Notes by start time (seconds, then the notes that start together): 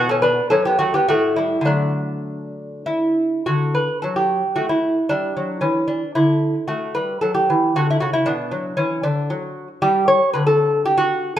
Already playing: B2
0.09 C#4 A4
0.22 D4 B4
0.50 F#2 C#4 A4
0.65 B3 G4
0.79 A3 F#4
0.94 B3 G4
1.08 A2 A3 F#4
1.36 G3 E4
1.61 D3 A3
1.66 F#3 D4
2.86 E4
3.46 D3 F#4
3.75 B4
4.02 F#3 A4
4.16 G4
4.56 A3 F#4
4.69 E4
5.09 G3 D4
5.37 F#3
5.61 E3 C#4
5.88 D4
6.15 D3 E4
6.68 A3 F#4
6.95 G3 B4
7.21 F#3 A4
7.34 G4
7.50 E3
7.76 D3 F#4
7.90 E4
8.00 C#3 F#4
8.13 E4
8.26 B2 D4
8.52 F#3
8.77 E3 C#4
9.03 D3 D4
9.30 F#3
9.82 G3 G4
10.08 C#5
10.33 D3 B4
10.47 A4
10.85 G4
10.98 F#4